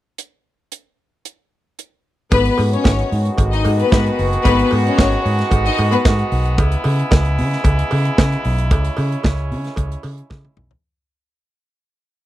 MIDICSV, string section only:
0, 0, Header, 1, 2, 480
1, 0, Start_track
1, 0, Key_signature, 5, "minor"
1, 0, Tempo, 532387
1, 163, Time_signature, 4, 2, 24, 8
1, 11048, End_track
2, 0, Start_track
2, 0, Title_t, "String section"
2, 0, Program_c, 0, 48
2, 2087, Note_on_c, 0, 71, 109
2, 2088, Note_on_c, 0, 59, 92
2, 2279, Note_off_c, 0, 71, 0
2, 2280, Note_off_c, 0, 59, 0
2, 2451, Note_on_c, 0, 73, 78
2, 2456, Note_on_c, 0, 61, 69
2, 2785, Note_off_c, 0, 73, 0
2, 2788, Note_off_c, 0, 61, 0
2, 3175, Note_on_c, 0, 63, 76
2, 3175, Note_on_c, 0, 75, 84
2, 3266, Note_off_c, 0, 63, 0
2, 3266, Note_off_c, 0, 75, 0
2, 3415, Note_on_c, 0, 71, 91
2, 3416, Note_on_c, 0, 59, 86
2, 3748, Note_off_c, 0, 71, 0
2, 3749, Note_off_c, 0, 59, 0
2, 4004, Note_on_c, 0, 71, 114
2, 4006, Note_on_c, 0, 59, 110
2, 4199, Note_off_c, 0, 71, 0
2, 4201, Note_off_c, 0, 59, 0
2, 4370, Note_on_c, 0, 73, 85
2, 4372, Note_on_c, 0, 61, 80
2, 4707, Note_off_c, 0, 61, 0
2, 4707, Note_off_c, 0, 73, 0
2, 5096, Note_on_c, 0, 63, 87
2, 5096, Note_on_c, 0, 75, 94
2, 5188, Note_off_c, 0, 63, 0
2, 5188, Note_off_c, 0, 75, 0
2, 5335, Note_on_c, 0, 71, 91
2, 5336, Note_on_c, 0, 59, 82
2, 5428, Note_off_c, 0, 59, 0
2, 5428, Note_off_c, 0, 71, 0
2, 11048, End_track
0, 0, End_of_file